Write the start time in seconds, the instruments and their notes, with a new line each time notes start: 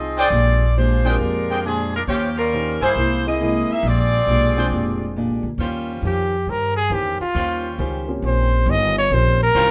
Already playing: upright bass C2, steel-string acoustic guitar F3 C4 D#4 G#4, saxophone section C4 F4 G#4 D#5
0.17 saxophone section C4 F4 G#4 D5, trumpet section D4 G#4 C5 G5
0.30 upright bass A#1, steel-string acoustic guitar A#2 G#3 D4 G4
0.77 steel-string acoustic guitar A#2 G#3 D4 G4, saxophone section G#3 D4 F4 C5
1.05 grand piano G#3 C4 D4 F4 G4, saxophone section G#3 D4 F4 A#4, trumpet section D4 G#4 C5 G5
1.19 upright bass F2, steel-string acoustic guitar A#2 G#3 D4 G4
1.50 trumpet section D4 G#4 C5 G5
1.65 steel-string acoustic guitar A#2 G#3 D4 G4, saxophone section F3 C4 D4 G#4
1.96 saxophone section G#3 D4 F4 A#4
2.07 upright bass D#2, steel-string acoustic guitar D#3 C#4 G4 C5, saxophone section F3 A#3 C#4 G4, trumpet section F4 C5 C#5 G5
2.38 saxophone section G3 C#4 F4 A#4
2.53 steel-string acoustic guitar D#3 C#4 G4 C5
2.81 upright bass G2, saxophone section A#3 E4 G#4 C5, trumpet section E4 A#4 C5 G#5
2.95 upright bass C2, steel-string acoustic guitar C3 G#3 A#3 E4
3.25 grand piano A#3 C4 E4 G#4 D#5, saxophone section A#3 E4 G#4 D#5
3.40 steel-string acoustic guitar C3 G#3 A#3 E4
3.69 saxophone section A#3 D#4 G#4 E5, muted upright bass stroke
3.83 upright bass A#1, steel-string acoustic guitar A#2 G#3 D4 G4, saxophone section C4 F4 G#4 D5
4.26 upright bass B1, steel-string acoustic guitar A#2 G#3 D4 G4
4.57 grand piano G#3 C4 D4 F4 G5, trumpet section D4 G#4 C5 G5
4.70 upright bass F1, steel-string acoustic guitar A#2 G#3 D4 G4
5.16 steel-string acoustic guitar A#2 G#3 D4 G4
5.29 upright bass C2
5.43 upright bass D2
5.58 upright bass D#2, steel-string acoustic guitar D#3 C#4 G4 C5, saxophone section G3 C#4 F4 C5
6.02 upright bass F2, steel-string acoustic guitar D#3 C#4 G4 C5
6.06 trumpet G4
6.46 upright bass G2, steel-string acoustic guitar D#3 C#4 G4 C5, trumpet A#4
6.77 trumpet G#4
6.90 upright bass E2, steel-string acoustic guitar D#3 C#4 G4 C5, trumpet G4
7.20 trumpet F4, muted upright bass stroke
7.34 upright bass D#2, steel-string acoustic guitar D#3 C#4 G4 C5, saxophone section G3 C#4 F4 C5
7.78 upright bass C#2, steel-string acoustic guitar D#3 C#4 G4 C5
8.07 grand piano A#3 C4 C#4 F4 G4
8.22 upright bass A#1, steel-string acoustic guitar D#3 C#4 G4 C5, trumpet C5
8.66 upright bass G1, steel-string acoustic guitar D#3 C#4 G4 C5
8.70 trumpet D#5
8.98 trumpet C#5
9.10 upright bass A#1, steel-string acoustic guitar D#3 C#4 G4 C5, grand piano A#3 C4 C#4 F4 G4, trumpet C5
9.43 trumpet A#4
9.54 upright bass C2, steel-string acoustic guitar D#3 C#4 G4 C5, saxophone section G3 C#4 F4 C5